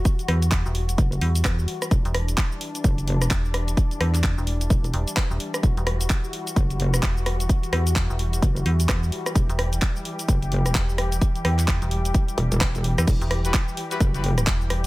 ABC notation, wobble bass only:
X:1
M:4/4
L:1/16
Q:"Swing 16ths" 1/4=129
K:Em
V:1 name="Wobble bass" clef=bass
z8 F,,,2 z6 | E,,, z6 z F,,,4 z4 | z8 E,,,2 z6 | E,,, z6 z F,,,4 z4 |
z8 F,,,2 z6 | E,,, z6 z F,,,4 z4 | z8 z2 E,,, E,,,4 z | E,,, z6 z F,,,4 z4 |]